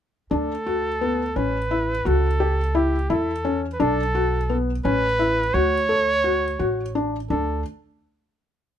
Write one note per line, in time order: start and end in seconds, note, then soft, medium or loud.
0.31 1.32 D2 medium
0.31 0.51 D4 medium
0.31 1.38 A4 medium
0.66 0.87 F#4 medium
1.01 1.22 B3 medium
1.36 2.02 A1 medium
1.36 1.56 C#4 medium
1.36 2.09 B4 medium
1.71 1.91 E4 medium
2.05 3.06 C#2 medium
2.05 2.26 F#4 medium
2.05 2.77 A4 medium
2.40 2.60 G4 medium
2.75 2.95 E4 medium
2.75 3.12 G4 medium
3.10 3.76 E2 medium
3.10 3.30 E4 medium
3.10 3.62 A4 medium
3.45 3.65 C#4 medium
3.73 3.82 B4 medium
3.80 4.80 B1 medium
3.80 4.00 D4 medium
3.80 4.57 A4 medium
4.15 4.35 F#4 medium
4.50 4.70 B3 medium
4.85 5.50 A1 medium
4.85 5.05 C#4 medium
4.85 5.55 B4 medium
5.19 5.39 E4 medium
5.54 6.55 D2 medium
5.54 5.74 F#4 medium
5.54 6.95 C#5 loud
5.89 6.09 A4 medium
6.24 6.45 F#4 medium
6.59 7.26 A1 medium
6.59 6.80 F#4 medium
6.95 7.15 D4 medium
7.30 7.63 D2 medium
7.30 7.63 D4 medium
7.30 7.62 A4 medium